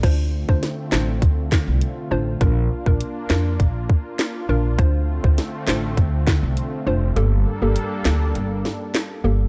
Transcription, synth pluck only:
X:1
M:4/4
L:1/16
Q:1/4=101
K:Dm
V:1 name="Synth pluck"
[DFc]3 [DFc] z2 [DFc] z6 z [DFc]2 | [DFB]3 [DFB] z2 [DFB] z6 z [DFB]2 | [DFc]3 [DFc] z2 [DFc] z6 z [DFc]2 | [B,GA]3 [B,GA] z2 [B,GA] z6 z [B,GA]2 |]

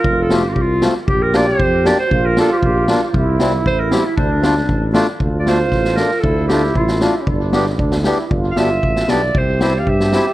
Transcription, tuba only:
X:1
M:2/4
L:1/8
Q:1/4=116
K:Dm
V:1 name="Tuba" clef=bass
F,,,2 C,,2 | B,,,2 F,,2 | B,,,2 B,,,2 | C,,2 A,,,2 |
D,,2 A,,,2 | D,,2 A,,,2 | D,,2 A,,,2 | G,,,2 D,,2 |
G,,, G,,, A,,, =B,,, | C,,2 G,,2 |]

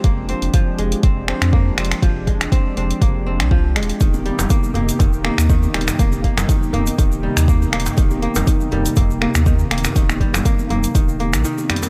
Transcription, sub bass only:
X:1
M:4/4
L:1/16
Q:"Swing 16ths" 1/4=121
K:Eb
V:1 name="Sub bass" clef=bass
F,,,2 z F,,, z2 F,,, z F,,,2 z F,,2 z F,,, z | F,,,2 z F,,, z2 F,,, z F,,,3 C,,3 E,,, z | E,,,2 z E,,, z2 E,,, z E,,,2 z E,,2 z E,,, z | E,,,2 z E,,, z2 E,,, z E,,,2 z E,,2 z E,,, z |
E,,,2 z E,,, z2 E,,, z E,,,2 z E,,2 z E,,, z | E,,,2 z E,,, z2 E,,, z E,,,3 B,,, z4 |]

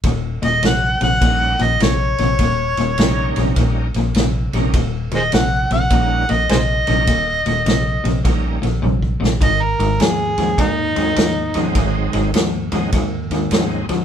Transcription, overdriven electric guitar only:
X:1
M:4/4
L:1/8
Q:"Swing" 1/4=102
K:Ab
V:1 name="Overdriven electric guitar" clef=bass
[E,,B,,] [E,,B,,] [E,,C,] [E,,C,] [E,,B,,] [E,,B,,] [E,,C,] [E,,C,] | [E,,B,,] [E,,B,,] [E,,C,] [E,,C,] [E,,B,,] [E,,B,,] [E,,C,] [E,,C,] | [E,,B,,] [E,,B,,] [E,,C,] [E,,C,] [E,,B,,] [E,,B,,] [E,,C,] [E,,C,] | [E,,B,,] [E,,B,,] [E,,C,] [E,,C,] [E,,B,,] [E,,B,,] [E,,C,] [E,,C,] |
[A,,E,] [A,,E,] [A,,F,] [A,,F,] [A,,E,] [A,,E,] [A,,F,] [A,,F,] | [A,,E,] [A,,E,] [A,,F,] [A,,F,] [A,,E,] [A,,E,] [A,,F,] [A,,F,] |]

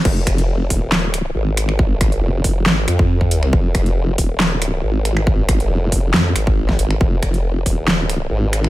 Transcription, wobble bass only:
X:1
M:4/4
L:1/8
Q:1/4=138
K:Fm
V:1 name="Wobble bass" clef=bass
F,,,3 E,,,3 A,,,2- | A,,, A,,, F,,,2 A,,, F,,3 | F,,,3 E,,,3 A,,,2- | A,,, A,,, F,,,2 F,, A,,,2 A,,, |
F,,,3 E,,,3 A,,,2 |]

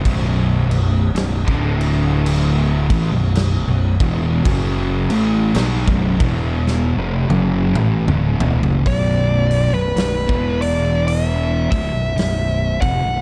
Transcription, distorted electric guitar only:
X:1
M:4/4
L:1/16
Q:"Swing" 1/4=54
K:Bm
V:1 name="Distorted electric guitar" clef=bass
[B,,,F,,B,,]2 [B,,,F,,]2 [B,,,F,,] [D,,A,,D,]4- [D,,A,,D,] [A,,E,] [B,,,F,,]2 [B,,,F,,] [E,,B,,E,]2 | [F,,C,F,]2 [A,,E,A,]2 [B,,F,] [B,,,F,,] [E,,B,,E,]3 [^E,,=C,] [F,,^C,F,]2 [A,,=E,] [D,,A,,] [=E,,B,,] [F,,C,] | [B,,,F,,B,,]3 [B,,,F,,] [B,,,F,,] [E,,B,,E,]4- [E,,B,,E,] [D,,A,,] [B,,,F,,] [B,,,F,,]2 [^E,,=C,] [B,,,F,,] |]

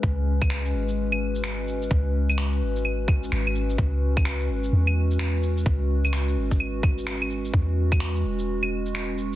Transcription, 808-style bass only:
X:1
M:4/4
L:1/8
Q:"Swing 16ths" 1/4=128
K:C#m
V:1 name="808-style bass" clef=bass
C,,3 G,,,4- G,,, | C,,3 G,,,3 G,,,2 | C,,3 G,,, E,,4 | C,,3 G,,,4- G,,, |
E,,3 E,,,4- E,,, |]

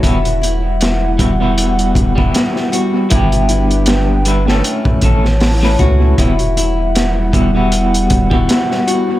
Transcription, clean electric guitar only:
X:1
M:4/4
L:1/16
Q:"Swing 16ths" 1/4=78
K:Edor
V:1 name="Clean electric guitar"
[G,B,EF] z4 z [G,B,EF] [G,B,EF]4 [G,B,EF]4- [G,B,EF] | [G,B,DG]6 [G,B,DE] [A,CEA]3 [A,CEA] z2 [A,CEB]3 | [G,B,EF] z4 z [G,B,EF] [G,B,EF]4 [G,B,EF]4- [G,B,EF] |]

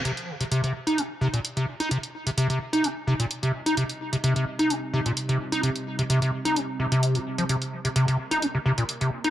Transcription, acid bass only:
X:1
M:4/4
L:1/16
Q:1/4=129
K:Cm
V:1 name="Acid bass" clef=bass
C, z2 C, C, C, z E C z C, B,, z C, z E | C, z2 C, C, C, z E C z C, B,, z C, z E | C, z2 C, C, C, z E C z C, B,, z C, z E | C, z2 C, C, z2 E C z C, C,2 B,, z F, |
C, z2 C, C, C, z E C C, C, B,, z C, z E |]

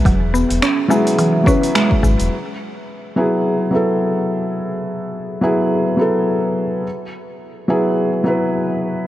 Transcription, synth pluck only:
X:1
M:4/4
L:1/16
Q:"Swing 16ths" 1/4=106
K:F#m
V:1 name="Synth pluck" clef=bass
F,2 B,2 C z G,2 E,2 C z G,2 G,2 | z16 | z16 | z16 |]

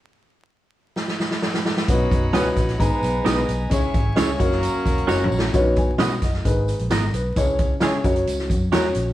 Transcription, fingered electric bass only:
X:1
M:4/4
L:1/16
Q:1/4=131
K:B
V:1 name="Fingered electric bass" clef=bass
z16 | B,,,2 F,,,2 C,,2 A,,,2 G,,, z B,,,2 B,,,2 B,,,2 | C,,2 G,,,2 C,,2 F,,,3 z E,,,2 F,,,2 A,,,2 | B,,,4 B,,2 F,,,2 G,,,3 A,,, G,,,2 B,,,2 |
C,,4 C,2 F,,,2 C,,2 F,,2 E,,2 A,,,2 |]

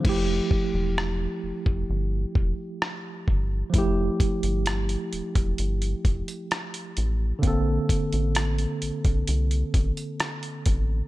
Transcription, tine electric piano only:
X:1
M:4/4
L:1/8
Q:1/4=65
K:F
V:1 name="Tine electric piano"
[F,A,EG]8 | [F,A,EG]8 | [D,B,CA]8 |]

